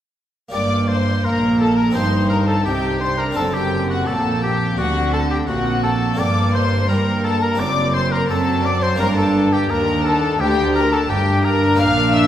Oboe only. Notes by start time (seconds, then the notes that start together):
0.53 D5
0.88 C5
1.25 A#4
1.60 A4
1.77 A#4
1.95 C5
2.30 A#4
2.48 A4
2.65 G4
3.01 C5
3.18 A#4
3.37 A4
3.53 G4
3.90 F#4
4.07 A4
4.43 G4
4.78 F#4
5.13 A4
5.31 G4
5.48 F#4
5.83 A4
6.19 D5
6.55 C5
6.89 A#4
7.24 A4
7.42 A#4
7.60 D5
7.94 C5
8.12 A#4
8.30 A4
8.65 D5
8.83 C5
9.00 A#4
9.18 A4
9.53 G4
9.70 A#4
10.06 A4
10.40 G4
10.76 A#4
10.92 A4
11.10 G4
11.44 A#4
11.80 F5
12.14 E5